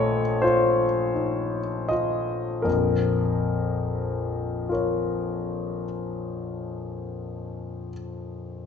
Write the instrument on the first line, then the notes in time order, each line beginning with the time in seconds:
grand piano
Already playing: A#1 A3 F4 C#5 D#5
0.42 F4 C5
1.14 D#4
1.89 F4 D#5
2.62 A#1 F2 A#4
4.69 F4 A#4 C#5